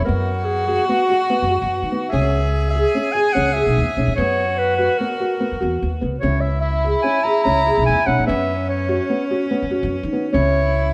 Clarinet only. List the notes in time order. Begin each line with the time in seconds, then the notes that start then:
0.05 A#4
0.45 G#4
0.67 G#4
0.86 F#4
2.09 E5
2.71 E5
3.13 G#5
3.33 F#5
3.53 E5
4.16 C#5
4.58 B4
4.77 B4
4.98 A#4
6.20 C#5
6.41 E5
6.61 E5
7.02 G#5
7.24 A#5
7.44 A#5
7.86 G#5
8.07 F#5
8.26 E5
8.70 C#5
10.33 C#5